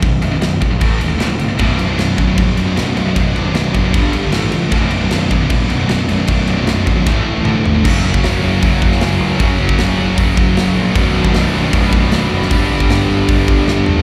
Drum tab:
CC |x-x-x-x-x-x-x-x-|x-x-x-x-x-x-x-x-|x-x-x-x-x-x-x-x-|x-x-x-x-x-x-x-x-|
HH |----------------|----------------|----------------|----------------|
SD |----o-------o---|----o-------o---|----o-------o---|----o-------o---|
T2 |----------------|----------------|----------------|----------------|
FT |----------------|----------------|----------------|----------------|
BD |o-----o-o-------|o-----o-o-------|o-----o-o-------|o-----o-o-------|

CC |x-x-x-x---------|x---------------|----------------|----------------|
HH |----------------|----o---o---o---|o---o---o---o---|o---o---o---o---|
SD |----o---o-------|----o------oo---|----o-------o---|----o-------o--o|
T2 |------------o---|----------------|----------------|----------------|
FT |--------------o-|----------------|----------------|----------------|
BD |o-----o-o-------|o--o----o-o-----|o--o----o-o-----|o--o----o-o-----|

CC |----------------|
HH |o---o---o-------|
SD |----o-------o---|
T2 |----------------|
FT |--------------o-|
BD |o--o----o-o-----|